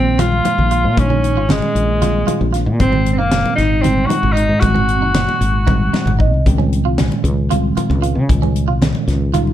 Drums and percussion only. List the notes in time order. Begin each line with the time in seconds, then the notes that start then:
0.19 snare, closed hi-hat, high conga, low conga
0.32 low conga
0.45 closed hi-hat, muted conga
0.59 low conga
0.71 closed hi-hat
0.97 kick, closed hi-hat, muted conga
1.10 high conga, low conga
1.23 closed hi-hat, low conga
1.49 snare, closed hi-hat, low conga
1.62 muted conga
1.76 closed hi-hat
2.02 snare, closed hi-hat, high conga, low conga
2.28 closed hi-hat, muted conga
2.41 low conga
2.54 snare, closed hi-hat
2.80 kick, closed hi-hat, muted conga
2.93 low conga
3.05 closed hi-hat, low conga
3.31 snare, closed hi-hat, low conga
3.46 muted conga
3.58 snare, closed hi-hat
3.84 closed hi-hat, high conga, low conga
3.98 low conga
4.10 closed hi-hat, muted conga
4.23 low conga
4.37 closed hi-hat
4.62 kick, closed hi-hat, muted conga, low conga
4.76 high conga, low conga
4.89 closed hi-hat
5.14 snare, closed hi-hat, low conga
5.29 muted conga, low conga
5.41 closed hi-hat
5.67 kick, high conga, low conga
5.94 snare, muted conga
6.07 mid tom, low conga
6.20 kick, low conga
6.34 low conga
6.46 kick, closed hi-hat, muted conga
6.59 high conga, low conga
6.73 closed hi-hat, low conga
6.98 snare, closed hi-hat, low conga
7.12 muted conga
7.25 closed hi-hat
7.51 closed hi-hat, high conga, low conga
7.77 closed hi-hat, muted conga
7.91 low conga
8.03 closed hi-hat
8.29 kick, closed hi-hat, muted conga
8.43 high conga, low conga
8.56 closed hi-hat, low conga
8.82 snare, closed hi-hat, low conga
8.95 muted conga
9.08 snare, closed hi-hat
9.34 closed hi-hat, high conga, low conga
9.47 low conga